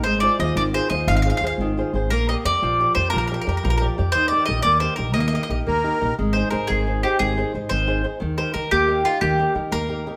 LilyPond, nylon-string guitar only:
\new Staff \with { instrumentName = "Nylon-string guitar" } { \time 6/8 \key ees \major \tempo 4. = 118 aes8 <f' aes' c''>8 <f' aes' c''>8 ees8 <f' aes' c''>8 <f' aes' c''>8 | ees8 <f' aes' c''>8 <f' aes' c''>8 ees8 <f' aes' c''>8 <f' aes' c''>8 | bes8 <g' bes' d''>8 <g' bes' d''>8 f8 <g' bes' d''>8 <g' bes' d''>8 | f8 <g' bes' d''>8 <g' bes' d''>8 f8 <g' bes' d''>8 <g' bes' d''>8 |
ees8 <ees' g' bes'>8 <ees' g' bes'>8 bes8 <ees' g' bes'>8 <ees' g' bes'>8 | bes8 <ees' g' bes'>8 <ees' g' bes'>8 bes8 <ees' g' bes'>8 <ees' g' bes'>8 | \key aes \major aes8 <ees' aes' c''>8 <ees' aes' c''>8 ees8 <ees' aes' c''>8 <ees' aes' c''>8 | ees8 <ees' aes' c''>8 <ees' aes' c''>8 ees8 <ees' aes' c''>8 <ees' aes' c''>8 |
ees8 <ees' g' bes'>8 <ees' g' bes'>8 bes8 <ees' g' bes'>8 <ees' g' bes'>8 | bes8 <ees' g' bes'>8 <ees' g' bes'>8 bes8 <ees' g' bes'>8 <ees' g' bes'>8 | }